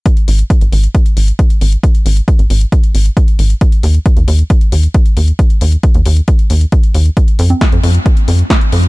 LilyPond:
<<
  \new Staff \with { instrumentName = "Analog synth bass" } { \clef bass \time 4/4 \key ees \mixolydian \tempo 4 = 135 r8 aes,,16 r8 aes,,16 aes,,16 r8. aes,,16 r8. aes,,16 r16 | r8 aes,,16 r8 aes,,16 aes,,16 r8. aes,,16 r8. aes,,16 r16 | r8 ees,16 r8 ees,16 ees,16 r8. ees,16 r8. ees,16 r16 | r8 ees,16 r8 ees,16 ees,16 r8. ees,16 r8. ees,16 r16 |
r8 f,16 r8 f,16 f,16 r8. f,16 r8. f,16 r16 | }
  \new DrumStaff \with { instrumentName = "Drums" } \drummode { \time 4/4 <hh bd>16 hh16 hho16 hh16 <hh bd>16 hh16 hho16 hh16 <hh bd>16 hh16 hho16 hh16 <hh bd>16 hh16 hho16 hh16 | <hh bd>16 hh16 hho16 hh16 <hh bd>16 hh16 hho16 hh16 <hh bd>16 hh16 hho16 hh16 <hh bd>16 hh16 hho16 hh16 | <hh bd>16 hh16 hho16 hh16 <hh bd>16 hh16 hho16 hh16 <hh bd>16 hh16 hho16 hh16 <hh bd>16 hh16 hho16 hh16 | <hh bd>16 hh16 hho16 hh16 <hh bd>16 hh16 hho16 hh16 <hh bd>16 hh16 hho16 hh16 <hh bd>16 hh16 hho16 hh16 |
<hh bd>16 hh16 hho16 <cgho hh>16 <hh bd sn>16 hh16 hho16 hh16 <hh bd>16 hh16 hho16 hh16 <hh bd sn>16 hh16 hho16 hh16 | }
>>